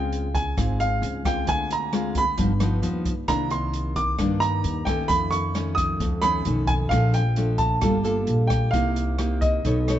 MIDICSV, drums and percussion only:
0, 0, Header, 1, 2, 480
1, 0, Start_track
1, 0, Tempo, 453515
1, 1557, Time_signature, 4, 2, 24, 8
1, 10574, End_track
2, 0, Start_track
2, 0, Title_t, "Drums"
2, 132, Note_on_c, 9, 42, 43
2, 238, Note_off_c, 9, 42, 0
2, 367, Note_on_c, 9, 36, 57
2, 370, Note_on_c, 9, 42, 41
2, 473, Note_off_c, 9, 36, 0
2, 476, Note_off_c, 9, 42, 0
2, 608, Note_on_c, 9, 36, 58
2, 610, Note_on_c, 9, 37, 54
2, 610, Note_on_c, 9, 42, 52
2, 713, Note_off_c, 9, 36, 0
2, 715, Note_off_c, 9, 37, 0
2, 715, Note_off_c, 9, 42, 0
2, 848, Note_on_c, 9, 42, 37
2, 954, Note_off_c, 9, 42, 0
2, 1090, Note_on_c, 9, 42, 46
2, 1195, Note_off_c, 9, 42, 0
2, 1323, Note_on_c, 9, 36, 57
2, 1328, Note_on_c, 9, 37, 63
2, 1328, Note_on_c, 9, 42, 46
2, 1429, Note_off_c, 9, 36, 0
2, 1434, Note_off_c, 9, 37, 0
2, 1434, Note_off_c, 9, 42, 0
2, 1557, Note_on_c, 9, 42, 57
2, 1561, Note_on_c, 9, 36, 58
2, 1663, Note_off_c, 9, 42, 0
2, 1667, Note_off_c, 9, 36, 0
2, 1805, Note_on_c, 9, 42, 45
2, 1911, Note_off_c, 9, 42, 0
2, 2040, Note_on_c, 9, 37, 58
2, 2040, Note_on_c, 9, 42, 42
2, 2146, Note_off_c, 9, 37, 0
2, 2146, Note_off_c, 9, 42, 0
2, 2276, Note_on_c, 9, 42, 49
2, 2277, Note_on_c, 9, 36, 58
2, 2382, Note_off_c, 9, 42, 0
2, 2383, Note_off_c, 9, 36, 0
2, 2515, Note_on_c, 9, 42, 60
2, 2517, Note_on_c, 9, 36, 54
2, 2621, Note_off_c, 9, 42, 0
2, 2623, Note_off_c, 9, 36, 0
2, 2754, Note_on_c, 9, 37, 58
2, 2754, Note_on_c, 9, 42, 45
2, 2859, Note_off_c, 9, 37, 0
2, 2859, Note_off_c, 9, 42, 0
2, 2995, Note_on_c, 9, 42, 48
2, 3101, Note_off_c, 9, 42, 0
2, 3234, Note_on_c, 9, 36, 53
2, 3234, Note_on_c, 9, 42, 50
2, 3339, Note_off_c, 9, 36, 0
2, 3339, Note_off_c, 9, 42, 0
2, 3472, Note_on_c, 9, 37, 58
2, 3472, Note_on_c, 9, 42, 60
2, 3474, Note_on_c, 9, 36, 54
2, 3578, Note_off_c, 9, 37, 0
2, 3578, Note_off_c, 9, 42, 0
2, 3580, Note_off_c, 9, 36, 0
2, 3710, Note_on_c, 9, 42, 43
2, 3816, Note_off_c, 9, 42, 0
2, 3952, Note_on_c, 9, 42, 44
2, 4058, Note_off_c, 9, 42, 0
2, 4190, Note_on_c, 9, 42, 40
2, 4192, Note_on_c, 9, 36, 58
2, 4296, Note_off_c, 9, 42, 0
2, 4298, Note_off_c, 9, 36, 0
2, 4430, Note_on_c, 9, 37, 57
2, 4430, Note_on_c, 9, 42, 52
2, 4432, Note_on_c, 9, 36, 58
2, 4536, Note_off_c, 9, 37, 0
2, 4536, Note_off_c, 9, 42, 0
2, 4538, Note_off_c, 9, 36, 0
2, 4675, Note_on_c, 9, 42, 42
2, 4781, Note_off_c, 9, 42, 0
2, 4911, Note_on_c, 9, 42, 43
2, 5017, Note_off_c, 9, 42, 0
2, 5150, Note_on_c, 9, 37, 66
2, 5150, Note_on_c, 9, 42, 43
2, 5151, Note_on_c, 9, 36, 58
2, 5256, Note_off_c, 9, 37, 0
2, 5256, Note_off_c, 9, 42, 0
2, 5257, Note_off_c, 9, 36, 0
2, 5391, Note_on_c, 9, 42, 55
2, 5392, Note_on_c, 9, 36, 58
2, 5497, Note_off_c, 9, 42, 0
2, 5498, Note_off_c, 9, 36, 0
2, 5633, Note_on_c, 9, 42, 44
2, 5738, Note_off_c, 9, 42, 0
2, 5874, Note_on_c, 9, 37, 61
2, 5874, Note_on_c, 9, 42, 43
2, 5979, Note_off_c, 9, 37, 0
2, 5979, Note_off_c, 9, 42, 0
2, 6113, Note_on_c, 9, 36, 59
2, 6114, Note_on_c, 9, 42, 49
2, 6219, Note_off_c, 9, 36, 0
2, 6220, Note_off_c, 9, 42, 0
2, 6352, Note_on_c, 9, 36, 53
2, 6354, Note_on_c, 9, 42, 55
2, 6458, Note_off_c, 9, 36, 0
2, 6460, Note_off_c, 9, 42, 0
2, 6588, Note_on_c, 9, 37, 61
2, 6588, Note_on_c, 9, 42, 40
2, 6693, Note_off_c, 9, 37, 0
2, 6693, Note_off_c, 9, 42, 0
2, 6827, Note_on_c, 9, 42, 49
2, 6933, Note_off_c, 9, 42, 0
2, 7064, Note_on_c, 9, 42, 46
2, 7069, Note_on_c, 9, 36, 57
2, 7170, Note_off_c, 9, 42, 0
2, 7175, Note_off_c, 9, 36, 0
2, 7312, Note_on_c, 9, 36, 58
2, 7314, Note_on_c, 9, 37, 61
2, 7314, Note_on_c, 9, 42, 58
2, 7417, Note_off_c, 9, 36, 0
2, 7420, Note_off_c, 9, 37, 0
2, 7420, Note_off_c, 9, 42, 0
2, 7554, Note_on_c, 9, 42, 44
2, 7660, Note_off_c, 9, 42, 0
2, 7792, Note_on_c, 9, 42, 43
2, 7898, Note_off_c, 9, 42, 0
2, 8023, Note_on_c, 9, 42, 43
2, 8030, Note_on_c, 9, 36, 59
2, 8129, Note_off_c, 9, 42, 0
2, 8136, Note_off_c, 9, 36, 0
2, 8270, Note_on_c, 9, 37, 57
2, 8270, Note_on_c, 9, 42, 56
2, 8271, Note_on_c, 9, 36, 54
2, 8376, Note_off_c, 9, 37, 0
2, 8376, Note_off_c, 9, 42, 0
2, 8377, Note_off_c, 9, 36, 0
2, 8518, Note_on_c, 9, 42, 40
2, 8624, Note_off_c, 9, 42, 0
2, 8753, Note_on_c, 9, 42, 42
2, 8859, Note_off_c, 9, 42, 0
2, 8998, Note_on_c, 9, 36, 55
2, 8998, Note_on_c, 9, 37, 60
2, 8998, Note_on_c, 9, 42, 44
2, 9104, Note_off_c, 9, 36, 0
2, 9104, Note_off_c, 9, 37, 0
2, 9104, Note_off_c, 9, 42, 0
2, 9241, Note_on_c, 9, 36, 59
2, 9244, Note_on_c, 9, 42, 59
2, 9347, Note_off_c, 9, 36, 0
2, 9350, Note_off_c, 9, 42, 0
2, 9485, Note_on_c, 9, 42, 44
2, 9591, Note_off_c, 9, 42, 0
2, 9721, Note_on_c, 9, 37, 62
2, 9721, Note_on_c, 9, 42, 43
2, 9827, Note_off_c, 9, 37, 0
2, 9827, Note_off_c, 9, 42, 0
2, 9967, Note_on_c, 9, 42, 44
2, 9968, Note_on_c, 9, 36, 59
2, 10073, Note_off_c, 9, 42, 0
2, 10074, Note_off_c, 9, 36, 0
2, 10211, Note_on_c, 9, 36, 52
2, 10211, Note_on_c, 9, 42, 53
2, 10317, Note_off_c, 9, 36, 0
2, 10317, Note_off_c, 9, 42, 0
2, 10457, Note_on_c, 9, 37, 57
2, 10457, Note_on_c, 9, 42, 45
2, 10563, Note_off_c, 9, 37, 0
2, 10563, Note_off_c, 9, 42, 0
2, 10574, End_track
0, 0, End_of_file